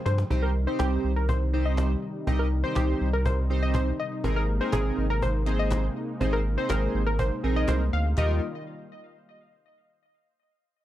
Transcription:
Already playing: analog synth pad C3 F3 G#3 G5
0.06 sub bass G2, synth pluck C5, cajon slap
0.18 cajon slap
0.30 sub bass C2, analog synth pad C3 D#3 G3 D#4, analog polysynth C4 D#4 G4 C5, cajon bass
0.43 synth pluck A#4
0.55 cajon slap
0.67 analog polysynth C4 D#4 G4 C5, synth pluck C5
0.79 sub bass C2, synth pluck G4, cajon bass, cajon slap
0.92 cajon slap
1.04 sub bass C2, cajon slap
1.16 synth pluck A#4, cajon slap
1.29 synth pluck C5, cajon bass
1.41 cajon slap
1.53 analog polysynth C4 D#4 G4 C5, cajon slap
1.65 synth pluck D#5
1.77 cajon bass, cajon slap
1.91 cajon slap
2.03 cajon slap
2.15 cajon slap
2.27 sub bass C2, analog polysynth C4 D#4 G4 D#5, cajon bass
2.39 synth pluck A#4
2.64 analog polysynth C4 D#4 G4 C5, synth pluck C5
2.75 sub bass C2, synth pluck G4, cajon bass, cajon slap
2.89 cajon slap
3.01 sub bass C2, cajon slap
3.13 synth pluck A#4, cajon slap
3.25 synth pluck C5, cajon bass
3.38 cajon slap
3.50 analog polysynth C4 D#4 G4 C5
3.62 synth pluck D#5, cajon slap
3.74 synth pluck C5, cajon bass, cajon slap
3.87 cajon slap
3.99 synth pluck D#5, cajon slap
4.12 cajon slap
4.24 sub bass G#1, analog synth pad G#3 A#3, analog polysynth C4 D#4 G#4 A#4, cajon bass
4.36 synth pluck A#4, cajon slap
4.61 analog polysynth C4 D#4 G#4 A#4, synth pluck C5
4.72 sub bass G#1, synth pluck G#4, cajon bass, cajon slap, clap
4.86 cajon slap
4.98 sub bass G#1, cajon slap
5.10 synth pluck A#4, cajon slap
5.22 synth pluck C5, cajon bass
5.35 cajon slap
5.47 analog polysynth C4 D#4 G#4 C5, cajon slap, clap
5.59 synth pluck D#5
5.71 cajon bass, cajon slap, clap
5.84 cajon slap
5.96 cajon slap
6.09 cajon slap
6.20 sub bass G#1, analog polysynth C4 D#4 G#4 C5, cajon bass
6.33 synth pluck A#4, cajon slap
6.46 cajon slap
6.57 analog polysynth C4 D#4 G#4 C5, synth pluck C5
6.69 sub bass G#1, synth pluck A#4, cajon bass, cajon slap, clap
6.82 cajon slap
6.94 sub bass G#1
7.07 synth pluck A#4, cajon slap
7.19 synth pluck C5, cajon bass
7.31 cajon slap
7.43 sub bass A#1, analog polysynth C4 D#4 G#4 A#4, cajon slap
7.56 synth pluck D#5
7.68 sub bass C2, synth pluck C5, cajon bass, cajon slap, clap
7.81 cajon slap
7.93 sub bass D2, synth pluck F5, cajon slap
8.05 cajon slap
8.17 sub bass D#2, analog synth pad D#3 G3 A#3 F4, analog polysynth D#4 F4 G4 A#4, synth pluck D#5, cajon bass, clap

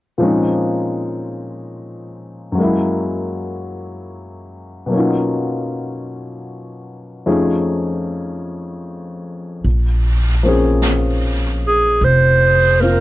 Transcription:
0.18 grand piano A#2 F3 G#3 C4
0.23 grand piano C#4 D#4
2.52 grand piano F#2 F#3
2.58 grand piano G#3 A#3
2.63 grand piano E4
4.86 grand piano B2 F#3
4.91 grand piano A#3 C#4
4.95 grand piano D#4 F4
7.26 grand piano F2 F3 A3 C#4 D#4 G#4
9.63 upright bass A#1, brush sweep
10.43 grand piano F3 A#3 C4 C#4
10.48 grand piano G#4
10.82 brush sweep, snare, hi-hat pedal
11.67 clarinet G#4
12.00 upright bass F1, clarinet C5, brush sweep
12.80 grand piano A#3 C4 F4, clarinet A#4

